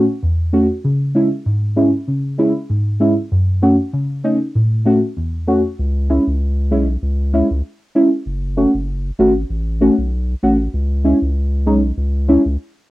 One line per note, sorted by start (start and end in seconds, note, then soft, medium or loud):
0.22 0.70 E2 medium
0.53 0.67 A3 medium
0.53 0.67 C#4 medium
0.53 0.67 F#4 medium
0.84 1.32 C#3 medium
1.15 1.29 G#3 medium
1.15 1.29 C#4 medium
1.15 1.29 E4 medium
1.46 1.93 G#2 medium
1.76 1.90 G#3 medium
1.76 1.91 C#4 medium
1.76 1.91 E4 loud
2.08 2.55 C#3 medium
2.38 2.52 G#3 medium
2.38 2.52 C#4 medium
2.38 2.53 E4 loud
2.69 3.17 G#2 medium
3.00 3.14 G#3 medium
3.00 3.14 C#4 medium
3.00 3.14 E4 medium
3.31 3.79 F#2 medium
3.62 3.76 A3 medium
3.62 3.76 C#4 medium
3.62 3.76 F#4 medium
3.93 4.41 C#3 medium
4.24 4.38 A3 medium
4.24 4.38 C#4 medium
4.24 4.38 D#4 loud
4.55 5.03 A2 medium
4.86 5.00 A3 medium
4.86 5.00 C#4 medium
4.86 5.00 F#4 loud
5.17 5.64 E2 medium
5.47 5.61 A3 medium
5.47 5.62 C#4 medium
5.47 5.62 F#4 medium
5.79 6.19 C#2 loud
6.09 6.23 G#3 medium
6.09 6.23 C#4 medium
6.09 6.24 E4 medium
6.27 6.73 C#2 loud
6.71 6.97 B1 loud
6.71 6.85 G#3 medium
6.71 6.85 C#4 medium
6.71 6.85 E4 medium
7.02 7.42 C#2 medium
7.33 7.47 G#3 medium
7.33 7.47 C#4 medium
7.33 7.47 E4 loud
7.51 7.62 C#2 medium
7.95 8.09 G#3 medium
7.95 8.09 C#4 medium
7.95 8.09 E4 loud
8.26 8.66 F#1 loud
8.57 8.71 A3 medium
8.57 8.71 C#4 medium
8.57 8.71 F#4 medium
8.74 9.11 F#1 medium
9.19 9.44 G#1 loud
9.19 9.33 A3 medium
9.19 9.33 C#4 medium
9.19 9.33 F#4 loud
9.50 9.90 A1 loud
9.81 9.95 A3 medium
9.81 9.95 C#4 medium
9.81 9.95 F#4 loud
9.98 10.35 B1 medium
10.43 10.68 A1 medium
10.43 10.57 A3 medium
10.43 10.57 C#4 medium
10.43 10.57 F#4 loud
10.74 11.13 C#2 loud
11.04 11.18 G#3 medium
11.04 11.18 C#4 medium
11.04 11.19 E4 medium
11.22 11.68 C#2 loud
11.66 11.92 B1 medium
11.66 11.80 G#3 medium
11.66 11.80 C#4 medium
11.66 11.80 D#4 loud
11.97 12.37 C#2 medium
12.28 12.42 G#3 medium
12.28 12.42 C#4 medium
12.28 12.42 E4 loud
12.45 12.57 C#2 medium